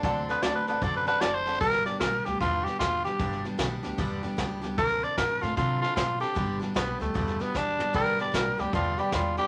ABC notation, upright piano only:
X:1
M:4/4
L:1/8
Q:"Swing" 1/4=152
K:G
V:1 name="Upright piano"
[dfa] [dfc'] [dfa] [dfa] [dfa] [dfa] [dfa] [dfa] | z8 | z8 | z8 |
z8 | [dgb] [dgb] [dgb] [dgb] [dga] [dgb] [dgb] [dgb] |]